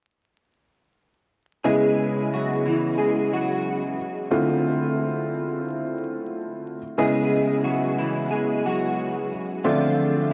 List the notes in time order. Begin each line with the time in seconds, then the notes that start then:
1.64 C#3 G#3 B3 E4 G#4 D#5
2.34 F#3 F#4
2.66 E3 E4
2.98 G#3 G#4
3.33 F#3 F#4
4.31 D3 A3 C4 E4 F4
6.98 C#3 G#3 B3 E4 G#4 D#5
7.64 F#3 F#4
7.98 E3 E4
8.31 G#3 G#4
8.66 F#3 F#4
9.64 D3 F3 A3 C4 D4 F4 E5